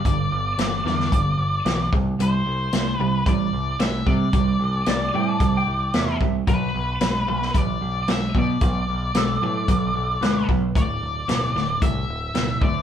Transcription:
Already playing: lead electric guitar D5
0.05 picked electric bass G1, overdriven electric guitar G2 D3, kick, closed hi-hat
0.31 picked electric bass G1
0.58 picked electric bass G1, overdriven electric guitar G2 E3, snare, closed hi-hat
0.85 picked electric bass E2, overdriven electric guitar G2 D3, snare
1.00 snare
1.12 picked electric bass G1, overdriven electric guitar G2 D3, kick, closed hi-hat
1.38 picked electric bass G1
1.65 picked electric bass B1, overdriven electric guitar G2 E3, snare, closed hi-hat
1.93 picked electric bass C2, overdriven electric guitar C3 G3, kick
2.19 picked electric bass C2, overdriven electric guitar C3 G3, lead electric guitar C5, closed hi-hat
2.46 picked electric bass C2
2.73 picked electric bass C2, overdriven electric guitar C3 A3, snare, closed hi-hat
2.94 lead electric guitar B4
3.00 picked electric bass C2, overdriven electric guitar C3 G3
3.26 picked electric bass A1, overdriven electric guitar C3 G3, lead electric guitar D5, kick, closed hi-hat
3.53 picked electric bass C2
3.79 picked electric bass C2, overdriven electric guitar C3 A3, lead electric guitar E5, snare, closed hi-hat
4.06 picked electric bass C3, overdriven electric guitar C3 G3, lead electric guitar D5, kick
4.33 picked electric bass C2, overdriven electric guitar C3 G3, kick, closed hi-hat
4.60 picked electric bass C2
4.86 picked electric bass C2, overdriven electric guitar C3 A3, electric slide guitar D5, snare, closed hi-hat
5.14 picked electric bass A2, overdriven electric guitar C3 G3, electric slide guitar G5
5.29 electric slide guitar A5
5.40 picked electric bass C2, overdriven electric guitar C3 G3, kick, closed hi-hat
5.57 electric slide guitar G5
5.67 picked electric bass C2
5.94 picked electric bass E2, overdriven electric guitar C3 A3, electric slide guitar E5, snare, closed hi-hat
6.21 picked electric bass C2, overdriven electric guitar C3 G3, kick
6.47 picked electric bass B1, overdriven electric guitar B2 F#3, lead electric guitar B4, kick, closed hi-hat
6.75 picked electric bass B1
7.01 picked electric bass B1, overdriven electric guitar B2 G#3, snare, closed hi-hat
7.27 picked electric bass B1, overdriven electric guitar B2 F#3
7.42 snare
7.55 picked electric bass A1, overdriven electric guitar B2 F#3, lead electric guitar D5, kick, closed hi-hat
7.81 picked electric bass B1
8.08 picked electric bass B1, overdriven electric guitar B2 G#3, snare, closed hi-hat
8.12 lead electric guitar E5
8.35 picked electric bass B2, overdriven electric guitar B2 F#3, kick
8.39 lead electric guitar D5
8.61 picked electric bass B1, overdriven electric guitar B2 F#3, kick, closed hi-hat
8.89 picked electric bass B1
9.14 picked electric bass B1, overdriven electric guitar B2 G#3, electric slide guitar A4, snare, closed hi-hat
9.42 picked electric bass A2, overdriven electric guitar B2 F#3
9.68 picked electric bass B1, overdriven electric guitar B2 F#3, kick, closed hi-hat
9.94 picked electric bass B1
10.21 picked electric bass D2, overdriven electric guitar B2 G#3, electric slide guitar B4, snare, closed hi-hat
10.48 picked electric bass B1, overdriven electric guitar B2 F#3, kick
10.75 picked electric bass D1, overdriven electric guitar D2 A2, lead electric guitar D5, kick, closed hi-hat
11.01 picked electric bass D1
11.28 picked electric bass D1, overdriven electric guitar D2 B2, snare, closed hi-hat
11.55 picked electric bass D1, overdriven electric guitar D2 A2, snare
11.82 picked electric bass C2, overdriven electric guitar D2 A2, lead electric guitar E5, kick, closed hi-hat
12.08 picked electric bass D1
12.34 picked electric bass D1, overdriven electric guitar D2 B2, snare, closed hi-hat
12.61 picked electric bass D2, overdriven electric guitar D2 A2, lead electric guitar D5, kick

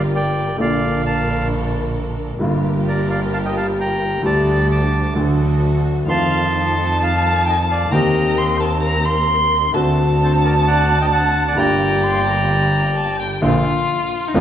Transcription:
Already playing: grand piano G1 G2 D3 G3 A#3 F4, double bass G1, string section F4 G4 A#4
0.15 bandoneon D5 G5
0.57 grand piano A#1 A#2 D3 A#3 F4 A4, double bass A#1, string section D4 A4 A#4, bandoneon D5
0.61 bandoneon F5
1.06 bandoneon F5 A5
2.38 grand piano G1 G2 D3 G3 A#3 F4, double bass G1, string section F4 G4 A#4
2.87 bandoneon A#4 D5
3.10 bandoneon D5 F5
3.33 bandoneon F5 A5
3.45 bandoneon D#5 G5
3.57 bandoneon F5 A5
3.80 bandoneon G5 A#5
4.22 double bass D2, grand piano D2 D3 G3 A3 G4, string section D4 G4 A4, bandoneon D5 A5
4.71 bandoneon A5 D6
5.15 grand piano D2 D3 F#3 A3 F#4, double bass D2, string section D4 F#4 A4
6.06 grand piano F2 D#3 F3 A3 C4 F4, double bass F2, string section D#4 F4 A4, violin F5, bandoneon A5 C6
6.54 violin A5
7.00 bandoneon F5 A5
7.45 bandoneon D#5 G5
7.69 bandoneon D5 F5
7.91 double bass D#2, grand piano D#2 D#3 A#3 C4 G4, string section C4 D#4 A#4, bandoneon D#5 G5, violin A#5
8.38 violin C6
8.60 violin A5
8.83 violin A#5
9.05 violin C6
9.72 grand piano D2 D3 A3 C4 F#4, double bass D2, string section C4 D4 F#4, violin A5
10.22 bandoneon A4 C5
10.45 bandoneon A#4 D5
10.67 bandoneon D5 F#5
11.01 bandoneon D#5 G5
11.13 bandoneon F#5 A5
11.48 bandoneon D5 F#5
11.55 grand piano G1 G2 D3 G3 A#3, double bass G1, string section A#3 F4 G4, violin A#5
11.59 grand piano F4, bandoneon D5 G5
12.03 violin C6
12.27 violin A#5
12.97 violin A5
13.20 violin G5
13.42 grand piano A#1 A#2 D3 F3 A#3 F4, double bass A#1, violin F4
14.28 violin D#4
14.34 grand piano F1 F2 D3 F3 A#3 F4, double bass F1, violin D4

